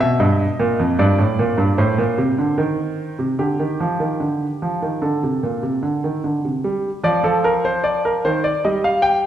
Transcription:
0.00 0.20 B2 medium
0.00 0.20 E5 medium
0.20 0.44 G2 medium
0.20 0.97 D#5 medium
0.59 0.79 A#2 medium
0.79 0.99 F2 medium
0.99 1.18 G2 medium
0.99 1.76 D5 medium
1.18 1.38 A2 medium
1.39 1.58 A#2 medium
1.58 1.77 G2 medium
1.78 1.97 A2 medium
1.78 3.34 C5 medium
1.98 2.17 A#2 medium
2.18 2.37 C3 medium
2.38 2.58 D3 medium
2.58 3.16 D#3 medium
3.19 3.38 C3 medium
3.39 3.58 D3 medium
3.39 4.98 G4 medium
3.59 3.79 D#3 medium
3.80 3.99 F3 medium
4.00 4.19 D#3 medium
4.20 4.45 D3 medium
4.62 4.81 F3 medium
4.82 5.01 D#3 soft
5.02 5.21 D3 medium
5.02 6.19 A4 soft
5.23 5.42 C3 medium
5.43 5.62 A#2 soft
5.63 5.82 C3 medium
5.83 6.02 D3 medium
6.04 6.23 D#3 soft
6.24 6.43 D3 medium
6.44 6.63 C3 soft
6.64 6.89 G3 medium
7.04 7.22 F3 medium
7.04 7.23 D5 medium
7.24 8.21 F3 medium
7.24 7.43 A4 medium
7.44 7.63 A#4 medium
7.65 7.84 C5 medium
7.84 8.03 D5 medium
8.05 8.24 A#4 medium
8.25 8.50 D#3 medium
8.25 8.44 C5 medium
8.44 8.63 D5 medium
8.65 9.27 G3 medium
8.65 8.84 D#5 medium
8.84 9.03 F5 medium
9.02 9.27 G5 medium

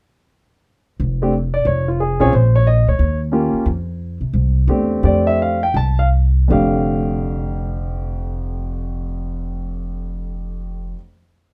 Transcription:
1.00 1.63 F1 medium
1.22 1.32 A3 soft
1.22 1.32 C4 soft
1.22 1.32 D4 medium
1.22 1.32 G4 medium
1.54 1.65 D5 medium
1.65 2.16 F1 medium
1.65 1.87 C#5 medium
1.88 1.99 F4 soft
2.00 2.19 G#4 medium
2.20 2.31 B1 medium
2.20 2.31 C4 medium
2.20 2.31 C#4 medium
2.20 2.31 F4 medium
2.20 2.31 G#4 medium
2.20 2.32 C#5 medium
2.33 2.83 A#1 medium
2.33 2.54 C5 medium
2.56 2.66 C#5 medium
2.67 2.87 D#5 medium
2.87 2.98 D2 medium
2.87 3.19 C#5 medium
2.99 3.50 D#2 medium
3.32 3.65 A#3 soft
3.32 3.65 C#4 soft
3.32 3.66 F4 soft
3.32 3.66 G4 medium
3.53 muted upright bass stroke soft
3.66 4.17 F2 medium
4.21 4.32 C3 medium
4.33 4.65 C2 medium
4.68 5.00 E2 medium
4.68 5.01 A3 medium
4.68 5.02 C4 soft
4.68 5.02 D4 soft
4.68 5.02 G4 medium
5.03 5.71 F2 medium
5.03 5.56 A3 medium
5.03 5.57 C4 soft
5.03 5.57 D4 soft
5.03 5.57 G4 medium
5.03 5.25 D5 medium
5.27 5.38 E5 medium
5.42 5.62 F5 medium
5.63 5.75 G5 medium
5.74 6.46 C2 medium
5.74 5.98 A5 medium
5.99 6.07 F5 medium
6.48 10.92 F1 medium
6.48 10.93 F2 medium
6.48 10.94 D3 medium
6.48 10.96 A3 medium
6.48 10.97 G4 medium
6.52 10.94 F5 medium

